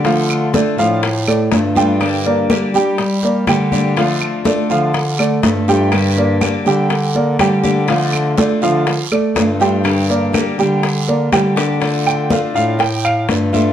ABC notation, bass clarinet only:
X:1
M:4/4
L:1/8
Q:1/4=122
K:Dm
V:1 name="Bass clarinet" clef=bass
D,3 A,,3 G,,2- | G,,3 G,3 D,2- | D,2 z D,3 G,,2- | G,,3 D,3 D,2- |
D,3 D,2 z G,,2- | G,,3 D,3 D,2- | D,3 A,,3 G,,2 |]